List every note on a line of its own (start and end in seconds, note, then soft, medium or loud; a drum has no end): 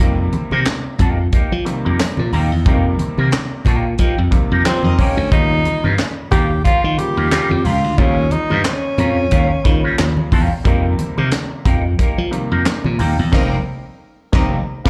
0.00 0.27 F2 loud
0.00 0.91 C3 medium
0.00 0.91 D#3 medium
0.00 0.91 G3 medium
0.00 0.17 A#3 medium
0.00 0.91 A#3 medium
0.00 0.17 D#4 medium
0.00 0.17 G4 medium
0.00 0.16 A#4 medium
0.17 muted clean electric guitar stroke soft
0.32 muted clean electric guitar stroke medium
0.32 closed hi-hat medium
0.32 muted conga soft
0.32 high conga medium
0.51 0.64 C3 medium
0.51 0.63 A#3 soft
0.51 0.63 D#4 medium
0.51 0.62 G4 medium
0.51 0.62 A#4 medium
0.51 high conga medium
0.65 snare loud
0.65 clap medium
0.65 closed hi-hat loud
0.65 muted conga soft
0.85 muted clean electric guitar stroke medium
0.99 1.27 F2 loud
0.99 1.21 A#3 medium
0.99 1.19 D#4 medium
0.99 1.18 G4 medium
0.99 1.17 A#4 medium
0.99 kick medium
0.99 closed hi-hat medium
0.99 low conga medium
1.18 muted clean electric guitar stroke medium
1.32 1.50 A#3 loud
1.32 1.51 D#4 medium
1.32 1.51 G4 loud
1.32 1.52 A#4 medium
1.32 kick loud
1.32 closed hi-hat medium
1.52 1.64 F3 loud
1.65 2.34 C3 medium
1.65 2.34 D#3 medium
1.65 2.34 G3 medium
1.65 2.34 A#3 medium
1.65 muted clean electric guitar stroke soft
1.65 closed hi-hat medium
1.84 1.97 F2 medium
1.84 1.96 A#3 soft
1.84 1.96 D#4 soft
1.84 1.96 G4 medium
1.84 1.95 A#4 medium
1.99 muted clean electric guitar stroke soft
1.99 snare loud
1.99 clap medium
1.99 closed hi-hat loud
2.17 2.31 A#2 medium
2.17 muted clean electric guitar stroke medium
2.17 high conga medium
2.33 2.52 D#2 loud
2.33 2.50 A#3 medium
2.33 2.51 D#4 medium
2.33 2.51 G4 loud
2.33 2.51 A#4 loud
2.33 open hi-hat medium
2.33 muted conga soft
2.33 low conga medium
2.52 2.66 E2 medium
2.52 muted clean electric guitar stroke medium
2.65 2.94 F2 loud
2.65 3.58 C3 medium
2.65 3.58 D#3 medium
2.65 3.58 G3 medium
2.65 2.73 A3 medium
2.65 2.84 A#3 medium
2.65 2.84 D#4 medium
2.65 2.85 G4 medium
2.65 2.84 A#4 loud
2.65 kick loud
2.65 closed hi-hat medium
2.65 low conga medium
2.73 3.62 A#3 medium
2.85 muted clean electric guitar stroke soft
2.99 muted clean electric guitar stroke soft
2.99 closed hi-hat medium
2.99 high conga medium
3.18 3.30 C3 medium
3.18 3.30 A#3 medium
3.18 3.30 D#4 medium
3.18 3.29 G4 medium
3.18 3.29 A#4 medium
3.18 high conga medium
3.31 muted clean electric guitar stroke soft
3.31 snare loud
3.31 clap medium
3.31 closed hi-hat loud
3.31 muted conga soft
3.52 muted clean electric guitar stroke medium
3.65 3.94 A#2 medium
3.65 3.87 A#3 medium
3.65 3.85 D#4 medium
3.65 3.85 G4 medium
3.65 3.84 A#4 medium
3.65 kick medium
3.65 closed hi-hat medium
3.65 muted conga soft
3.65 low conga medium
3.85 muted clean electric guitar stroke soft
3.98 4.15 F3 loud
3.98 4.17 A#3 medium
3.98 4.17 D#4 medium
3.98 4.18 G4 medium
3.98 4.18 A#4 medium
3.98 kick medium
3.98 closed hi-hat medium
3.98 muted conga soft
4.18 4.30 F2 loud
4.31 5.00 C3 medium
4.31 5.00 D#3 medium
4.31 5.00 G3 medium
4.31 5.01 A#3 medium
4.31 muted clean electric guitar stroke soft
4.31 kick loud
4.31 closed hi-hat medium
4.31 muted conga soft
4.51 4.63 F2 medium
4.51 4.63 A#3 soft
4.51 4.63 D#4 medium
4.51 4.62 G4 medium
4.51 4.62 A#4 medium
4.65 4.81 F3 loud
4.65 4.77 G3 medium
4.65 4.77 C4 loud
4.65 5.00 C4 medium
4.65 4.77 D#4 medium
4.65 4.77 C5 loud
4.65 snare loud
4.65 clap loud
4.65 closed hi-hat medium
4.83 4.96 F2 medium
4.83 5.05 C4 loud
4.83 5.05 D#4 loud
4.83 5.05 A#4 loud
4.83 5.05 D#5 loud
4.83 muted clean electric guitar stroke soft
4.83 high conga medium
4.98 5.16 A#3 medium
4.98 5.31 C#4 medium
4.98 5.17 D#4 medium
4.98 5.17 G4 loud
4.98 5.16 A#4 loud
4.98 kick medium
4.98 open hi-hat medium
4.98 low conga medium
5.17 5.29 D2 medium
5.17 muted clean electric guitar stroke soft
5.31 5.60 D#2 loud
5.31 6.24 C#3 medium
5.31 6.24 F3 medium
5.31 5.50 G3 medium
5.31 6.24 G3 medium
5.31 5.39 A3 medium
5.31 5.50 C#4 medium
5.31 5.95 D#4 loud
5.31 5.50 F4 medium
5.31 5.49 A#4 medium
5.31 kick loud
5.31 closed hi-hat medium
5.31 muted conga soft
5.31 low conga medium
5.39 6.28 A#3 medium
5.50 muted clean electric guitar stroke soft
5.65 muted clean electric guitar stroke soft
5.65 closed hi-hat medium
5.65 high conga medium
5.83 5.96 G2 medium
5.83 5.95 G3 soft
5.83 5.95 C#4 medium
5.83 5.95 F4 medium
5.83 5.94 A#4 medium
5.83 high conga medium
5.97 snare loud
5.97 clap medium
5.97 closed hi-hat loud
5.97 muted conga soft
6.17 muted clean electric guitar stroke medium
6.31 6.60 D#2 loud
6.31 6.50 G3 medium
6.31 6.50 C#4 loud
6.31 6.50 F4 loud
6.31 6.63 G4 loud
6.31 6.49 A#4 loud
6.31 kick loud
6.31 closed hi-hat medium
6.31 muted conga soft
6.31 low conga medium
6.50 muted clean electric guitar stroke medium
6.64 6.83 G3 medium
6.64 6.83 C#4 medium
6.64 7.00 F4 loud
6.64 6.84 F4 loud
6.64 6.84 A#4 loud
6.64 kick medium
6.64 closed hi-hat medium
6.84 6.96 D#3 medium
6.98 7.67 C#3 medium
6.98 7.67 F3 medium
6.98 7.67 G3 medium
6.98 7.67 A#3 medium
6.98 7.66 G4 loud
6.98 muted clean electric guitar stroke soft
6.98 closed hi-hat medium
6.98 muted conga soft
7.17 7.29 D#2 loud
7.17 7.29 G3 soft
7.17 7.29 C#4 medium
7.17 7.28 F4 medium
7.17 7.28 A#4 medium
7.31 7.49 G3 medium
7.31 7.50 C#4 medium
7.31 7.50 F4 medium
7.31 7.49 A#4 medium
7.31 snare loud
7.31 clap medium
7.31 closed hi-hat loud
7.31 muted conga soft
7.49 7.63 F2 medium
7.49 muted clean electric guitar stroke soft
7.49 high conga medium
7.64 7.84 C#2 medium
7.64 7.78 G3 medium
7.64 7.79 C#4 medium
7.64 8.00 F4 medium
7.64 7.79 F4 medium
7.64 7.80 A#4 medium
7.64 open hi-hat medium
7.64 low conga medium
7.84 7.96 D2 medium
7.84 muted clean electric guitar stroke soft
7.98 8.26 D#2 loud
7.98 8.90 C#3 medium
7.98 8.90 F3 medium
7.98 8.16 G3 medium
7.98 8.91 G3 medium
7.98 8.91 A#3 medium
7.98 8.33 C#4 medium
7.98 8.16 C#4 medium
7.98 8.17 F4 medium
7.98 8.16 A#4 loud
7.98 kick loud
7.98 closed hi-hat medium
7.98 muted conga soft
7.98 low conga medium
8.17 muted clean electric guitar stroke soft
8.31 8.64 D#4 loud
8.31 muted clean electric guitar stroke soft
8.31 closed hi-hat medium
8.31 high conga medium
8.50 8.63 G2 loud
8.50 8.62 G3 medium
8.50 8.62 C#4 medium
8.50 8.62 F4 medium
8.50 8.61 A#4 medium
8.50 high conga medium
8.64 10.28 C#4 medium
8.64 snare loud
8.64 clap medium
8.64 closed hi-hat medium
8.64 muted conga soft
8.83 muted clean electric guitar stroke soft
8.98 9.26 F2 medium
8.98 9.16 G3 medium
8.98 9.16 C#4 loud
8.98 9.17 F4 medium
8.98 9.16 A#4 loud
8.98 closed hi-hat medium
8.98 muted conga soft
8.98 low conga medium
9.17 muted clean electric guitar stroke soft
9.31 9.47 D#2 medium
9.31 9.49 G3 loud
9.31 9.50 C#4 loud
9.31 9.50 F4 loud
9.31 9.50 A#4 loud
9.31 kick medium
9.31 closed hi-hat loud
9.31 muted conga soft
9.64 10.33 C#3 medium
9.64 9.81 D#3 loud
9.64 10.33 F3 medium
9.64 10.34 G3 medium
9.64 10.34 A#3 medium
9.64 muted clean electric guitar stroke soft
9.64 kick loud
9.64 closed hi-hat medium
9.64 muted conga soft
9.84 9.96 G3 medium
9.84 9.95 C#4 medium
9.84 9.95 F4 medium
9.84 9.95 A#4 medium
9.98 10.14 D#2 medium
9.98 snare loud
9.98 clap loud
9.98 closed hi-hat medium
10.17 muted clean electric guitar stroke soft
10.17 high conga medium
10.32 10.48 E2 loud
10.32 10.53 G3 loud
10.32 10.50 C#4 medium
10.32 10.50 F4 loud
10.32 10.49 A#4 loud
10.32 kick medium
10.32 open hi-hat medium
10.32 muted conga soft
10.32 low conga medium
10.50 muted clean electric guitar stroke medium
10.64 10.93 F2 loud
10.64 11.57 C3 medium
10.64 11.57 D#3 medium
10.64 11.57 G3 medium
10.64 10.83 A#3 loud
10.64 11.58 A#3 medium
10.64 10.83 D#4 medium
10.64 10.83 G4 loud
10.64 10.83 A#4 loud
10.64 kick loud
10.64 closed hi-hat medium
10.64 low conga medium
10.84 muted clean electric guitar stroke medium
10.98 muted clean electric guitar stroke medium
10.98 closed hi-hat medium
10.98 muted conga soft
10.98 high conga medium
11.17 11.30 C3 medium
11.17 11.29 A#3 medium
11.17 11.29 D#4 medium
11.17 11.28 G4 medium
11.17 11.28 A#4 medium
11.17 high conga medium
11.31 snare loud
11.31 clap medium
11.31 closed hi-hat loud
11.31 muted conga soft
11.50 muted clean electric guitar stroke medium
11.65 11.93 F2 loud
11.65 11.83 A#3 medium
11.65 11.83 D#4 medium
11.65 11.84 G4 medium
11.65 11.83 A#4 medium
11.65 kick loud
11.65 closed hi-hat medium
11.65 muted conga soft
11.65 low conga medium
11.84 muted clean electric guitar stroke soft
11.98 12.17 A#3 medium
11.98 12.17 D#4 medium
11.98 12.17 G4 medium
11.98 12.18 A#4 loud
11.98 kick medium
11.98 closed hi-hat medium
11.98 muted conga soft
12.18 12.30 F3 loud
12.31 13.00 C3 medium
12.31 13.01 D#3 medium
12.31 13.01 G3 medium
12.31 13.01 A#3 medium
12.31 muted clean electric guitar stroke soft
12.31 closed hi-hat medium
12.51 12.64 F2 medium
12.51 12.63 A#3 medium
12.51 12.62 D#4 medium
12.51 12.62 G4 medium
12.51 12.62 A#4 medium
12.66 snare loud
12.66 clap loud
12.66 closed hi-hat loud
12.66 muted conga soft
12.84 12.97 A#2 medium
12.84 muted clean electric guitar stroke soft
12.84 high conga medium
12.98 13.16 D#2 loud
12.98 13.17 A#3 medium
12.98 13.17 D#4 medium
12.98 13.17 G4 loud
12.98 13.16 A#4 loud
12.98 open hi-hat medium
12.98 muted conga soft
12.98 low conga medium
13.17 13.31 E2 loud
13.17 muted clean electric guitar stroke soft
13.32 13.56 F1 loud
13.32 13.56 C3 loud
13.32 13.56 D#3 loud
13.32 13.56 G3 medium
13.32 13.56 A#3 loud
13.32 13.50 C4 loud
13.32 13.50 D#4 medium
13.32 13.56 D#4 loud
13.32 13.57 G4 loud
13.32 13.50 A#4 loud
13.32 13.57 A#4 loud
13.32 13.50 D#5 medium
13.32 kick loud
13.32 snare loud
13.32 crash medium
14.32 14.57 F1 loud
14.32 14.56 C3 loud
14.32 14.56 D#3 loud
14.32 14.57 G3 loud
14.32 14.56 A#3 loud
14.32 14.57 A#3 loud
14.32 14.51 C4 medium
14.32 14.57 D#4 loud
14.32 14.51 D#4 medium
14.32 14.57 G4 loud
14.32 14.51 A#4 medium
14.32 14.57 A#4 loud
14.32 14.51 D#5 loud
14.32 kick loud
14.32 snare loud
14.84 14.90 F1 loud
14.84 14.90 C3 loud
14.84 14.90 D#3 loud
14.84 14.90 G3 loud
14.84 14.90 A#3 loud
14.84 14.90 C4 loud
14.84 14.90 D#4 medium
14.84 14.90 G4 loud
14.84 14.90 A#4 medium
14.84 14.90 A#4 loud
14.84 14.90 D#5 medium
14.84 kick loud
14.84 snare loud